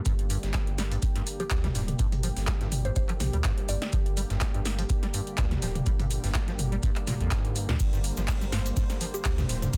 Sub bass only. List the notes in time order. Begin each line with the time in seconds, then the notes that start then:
0.06 G1
0.43 G1
1.51 D2
1.75 D1
1.99 G1
2.37 G1
2.96 F1
3.20 A#1
3.33 D2
3.69 G1
3.93 G1
4.30 G1
5.38 D2
5.62 D1
5.86 G1
6.24 G1
7.20 A#1
7.69 D2
7.80 G1
8.17 G1
9.25 D2
9.49 D1
9.73 G1